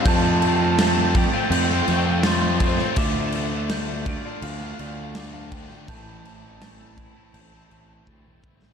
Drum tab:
CC |x-x-x-x-x-x-x-x-|x-x-x-x-x-x-x-x-|x-x-x-x-x-x-----|
SD |----o----o--o--o|----o----o--o--o|----o----o-----o|
BD |o-----o-------o-|o-----o-------o-|o-----o-----o-o-|